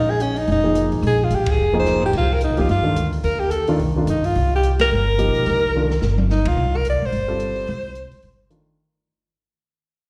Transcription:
Already playing: A#1 D#4
0.10 G#4
0.20 C#4, closed hi-hat
0.36 D#4, open hi-hat
0.47 F1, open hi-hat
0.51 D#4
0.64 F3 A#3 D#4 G#4
0.75 closed hi-hat
0.92 A1, open hi-hat
1.02 A#1, open hi-hat
1.07 G#4
1.24 F4
1.30 A1, closed hi-hat
1.34 G4
1.46 kick, ride
1.51 G#4
1.57 F1
1.73 F3 A#3 D#4 G#4
1.79 C5
1.85 snare
2.02 floor tom
2.06 G4
2.13 C2, kick, crash
2.17 F4
2.33 A#4
2.41 D#4, closed hi-hat
2.50 D2
2.57 C#2 F3 A#3 D#4 F4 G4, open hi-hat
2.69 G2 F4, open hi-hat
2.83 D#3 A3 D4 F4
2.96 D2, closed hi-hat
3.13 open hi-hat
3.24 D#2 A#4, open hi-hat
3.40 G4
3.51 A4, closed hi-hat
3.68 D#3 A3 D4 F4, open hi-hat
3.79 C2, open hi-hat
3.96 D#3 A3 D4 F4
4.07 G2 D#4, closed hi-hat
4.24 F4, open hi-hat
4.35 C2, open hi-hat
4.55 G4
4.63 closed hi-hat
4.79 A#4, snare, ride
4.91 G1
5.18 F3 A#3 D#4 G4, closed hi-hat
5.28 A#1
5.35 B1, open hi-hat
5.46 C2, open hi-hat
5.75 D#3 A3 D4 F4
5.90 snare
6.01 G1, snare
6.18 mid tom
6.30 D#4, snare
6.45 B1 F4, kick, ride
6.57 C2
6.77 A#4
6.85 closed hi-hat
6.90 D5
7.02 A#1 C5
7.12 G1, open hi-hat
7.28 G3 C4 F4 A4
7.40 closed hi-hat
7.56 open hi-hat
7.67 C2, open hi-hat
7.95 closed hi-hat
8.12 muted upright bass stroke, open hi-hat
8.23 G1, open hi-hat
8.50 D#3 A3 D4 F4, closed hi-hat

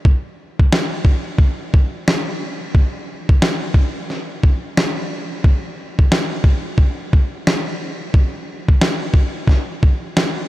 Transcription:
0.05 kick
0.59 kick
0.72 snare
1.05 kick
1.38 kick
1.74 kick
2.08 snare
2.75 kick
3.29 kick
3.42 snare
3.74 kick
4.10 snare
4.43 kick
4.77 snare
5.44 kick
5.99 kick
6.12 snare
6.44 kick
6.78 kick
7.13 kick
7.47 snare
8.14 kick
8.68 kick
8.81 snare
9.14 kick
9.47 kick, snare
9.83 kick
10.17 snare

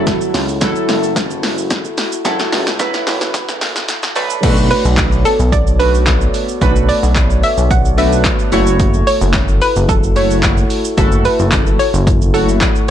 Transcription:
Already playing: F#1 F#3 E4 F#4 A4
0.07 kick, snare, closed hi-hat, shaker
0.21 shaker
0.34 C#2, snare, open hi-hat, shaker
0.49 shaker
0.61 F#3 E4 A4, kick, snare, closed hi-hat, shaker
0.76 shaker
0.89 F#1, snare, open hi-hat, shaker
1.03 shaker
1.16 kick, snare, closed hi-hat, shaker
1.31 shaker
1.43 snare, open hi-hat, shaker
1.58 shaker
1.70 kick, snare, closed hi-hat, shaker
1.85 shaker
1.98 snare, open hi-hat, shaker
2.12 shaker
2.25 F#1 F#3 E4 A4, kick, snare, closed hi-hat, shaker
2.39 snare, shaker
2.52 C#2, snare, open hi-hat, shaker
2.67 snare, shaker
2.79 F#3 E4 B4, kick, snare, closed hi-hat, shaker
2.94 snare, shaker
3.07 F#1, snare, open hi-hat, shaker
3.21 snare, shaker
3.34 kick, snare, closed hi-hat, shaker
3.49 snare, shaker
3.61 snare, open hi-hat, shaker
3.76 snare, shaker
3.89 snare, closed hi-hat, shaker
4.03 snare, shaker
4.16 B1 A3 B3 D4 F#4 B4 C#5 D5, open hi-hat, shaker
4.30 shaker
4.43 B1 A3 B3 D4 F#4 A4 B4 C#5 D5, kick, closed hi-hat, crash, shaker
4.57 shaker
4.71 B4, open hi-hat, shaker
4.85 B1, shaker
4.97 kick, snare, clap, closed hi-hat, shaker
5.12 shaker
5.25 A4, open hi-hat, shaker
5.40 B1, shaker
5.52 D5, kick, closed hi-hat, shaker
5.67 shaker
5.79 A3 D4 F#4 B4, open hi-hat, shaker
5.95 shaker
6.06 kick, snare, clap, closed hi-hat, shaker
6.21 shaker
6.34 open hi-hat, shaker
6.49 shaker
6.61 B1 A3 D4 F#4 B4, kick, closed hi-hat, shaker
6.76 shaker
6.89 D5, open hi-hat, shaker
7.03 B1, shaker
7.15 kick, snare, clap, closed hi-hat, shaker
7.30 shaker
7.43 E5, open hi-hat, shaker
7.58 B1, shaker
7.71 F#5, kick, closed hi-hat, shaker
7.85 shaker
7.97 A3 D4 F#4 B4 E5, open hi-hat, shaker
8.12 shaker
8.24 kick, snare, clap, closed hi-hat, shaker
8.39 shaker
8.52 F#1 A3 E4 F#4 A4 C#5, open hi-hat, shaker
8.67 shaker
8.80 kick, closed hi-hat, shaker
8.94 shaker
9.07 C#5, open hi-hat, shaker
9.21 F#1, shaker
9.33 kick, snare, clap, closed hi-hat, shaker
9.48 shaker
9.61 B4, open hi-hat, shaker
9.76 F#1, shaker
9.89 A4, kick, closed hi-hat, shaker
10.03 shaker
10.16 A3 E4 F#4 C#5, open hi-hat, shaker
10.31 shaker
10.43 kick, snare, clap, closed hi-hat, shaker
10.57 shaker
10.70 open hi-hat, shaker
10.85 shaker
10.97 F#1 A3 E4 F#4 A4, kick, closed hi-hat, shaker
11.12 shaker
11.25 B4, open hi-hat, shaker
11.39 F#1, shaker
11.51 kick, snare, clap, closed hi-hat, shaker
11.67 shaker
11.79 C#5, open hi-hat, shaker
11.94 F#1, shaker
12.07 kick, closed hi-hat, shaker
12.22 shaker
12.34 A3 E4 F#4 A4 C#5, open hi-hat, shaker
12.49 shaker
12.61 kick, snare, clap, closed hi-hat, shaker
12.76 shaker

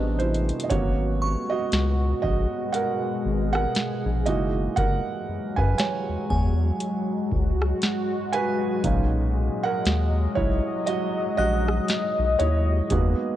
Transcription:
Already playing: A1 C3 G3 A3 B3 C4 D4 G4
0.19 E4 C5, closed hi-hat
0.34 closed hi-hat
0.49 closed hi-hat
0.60 D#5, closed hi-hat
0.70 G#1 B2 F#3 G#3 A#3 B3 C#4 F#4 C#5, kick, closed hi-hat
1.22 C#6
1.50 F#4 D#5
1.72 C#2, snare, closed hi-hat
2.22 A#1 F#4 D#5, kick
2.73 G#4 A#4 F#5, closed hi-hat
3.25 G#1
3.53 A#4 F#5, cross-stick
3.75 snare, closed hi-hat
4.06 A#1
4.26 F#1 E3 F#3 G#3 A#3 D#4 F#4 D#5, closed hi-hat
4.76 F#1 A#4 F#5, kick, closed hi-hat
5.29 F#2
5.56 F#2 B4 G#5, kick
5.78 C#5 G#5, snare, closed hi-hat
6.09 E2
6.30 E2 F#4 G#5, kick
6.80 closed hi-hat
7.32 C#2, kick
7.62 cross-stick
7.82 snare, closed hi-hat
8.33 B4 G#5, closed hi-hat
8.83 B1 A#2 F#3 C#4 D#4 D#5, kick, closed hi-hat
9.63 A#4 F#5
9.85 D#2, snare, closed hi-hat
10.35 B1 E4 C#5, kick
10.86 F#4 D#5, closed hi-hat
11.37 A#1 F#4 D#5 F#6
11.68 cross-stick
11.88 snare, closed hi-hat
12.19 B1
12.39 D#2 E4 C#5, closed hi-hat
12.90 E2 D#3 G#3 A#3 B3 D#4 F#4 G#4 A#4, kick, closed hi-hat

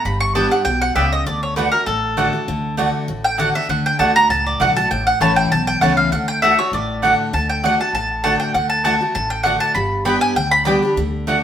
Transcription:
0.05 G1 G2 B5
0.20 C#6
0.35 G3 B3 D4 G4 D5 G5 A5
0.51 D4 G4 F#5
0.65 B1 B2 G5
0.82 F#5
0.95 C#2 C#3 B3 G4 D5 E5 G5
1.12 D#5
1.26 D2 D3 D5
1.43 C#5
1.56 D3 A3 D4 F#4 B4 D5 F#5
1.72 D4 F#4 A#4
1.86 A1 A2 A4
2.17 D3 A3 D4 F#4 D5 F#5
2.33 D4 F#4
2.48 D2 D3
2.77 D3 A3 D4 F#4 D5 F#5
3.08 A1 A2
3.24 G5
3.38 D3 A3 D4 F#4 D5 F#5
3.54 D4 F#4 E5
3.69 D2 D3 F#5
3.86 G5
3.99 D2 D3 A3 D4 F#4 D5 F#5 A5
4.16 D4 F#4 A#5
4.29 C#2 A2 A5
4.46 D5
4.60 B1 D3 A3 D4 F#4 D5 F#5
4.76 D4 F#4 A5
4.91 A1 A2 G5
5.07 F#5
5.20 A1 E3 A3 C#4 E4 C#5 A5
5.36 G5
5.51 B1 E2 A5
5.67 G5
5.81 C#2 E3 A3 C#4 E4 C#5 F#5 A5
5.97 F5
6.11 D2 D3 F#5
6.28 G5
6.42 D3 A3 D4 F#4 D5 E5 F#5
6.58 D4 F#4 C#5
6.72 A1 A2 D5
7.02 D3 A3 D4 F#4 D5 F#5
7.33 D2 D3 A5
7.50 G5
7.63 D3 A3 D4 F#4 D5 F#5
7.80 D4 F#4 A5
7.93 A1 A2 A5
8.24 D3 A3 D4 F#4 D5 F#5 A5
8.40 G5
8.54 D2 D3 F#5
8.70 A5
8.84 D3 A3 D4 F#4 D5 F#5 A5
9.01 D4 F#4
9.15 A1 A2 A5
9.30 G5
9.43 D3 A3 D4 F#4 D5 F#5
9.60 A5
9.75 G1 G2 B5
10.05 G3 B3 D4 G4 D5 G5 B5
10.21 G#5
10.35 D2 D3 G5
10.51 B5
10.65 G3 B3 D4 G4 D5 G5 B5
10.82 D4 G4
10.96 D2 D3
11.27 D3 A3 D4 F#4 D5 F#5

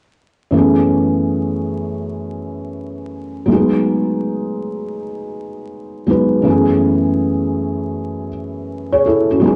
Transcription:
0.51 F#2 E3 A3
0.55 B3 C#4 G#4
3.46 F#3 G#3 A3
3.52 D#4 G#4
3.56 B3
6.06 F#3 G#3 B3 D#4
6.11 B4
6.42 F#2 E3 A3
6.47 B3 C#4 G#4
8.92 G#4 C#5
9.06 E4 A4
9.31 C#4 F#4
9.40 F#3 G#3 B3
9.45 D#4 G#4

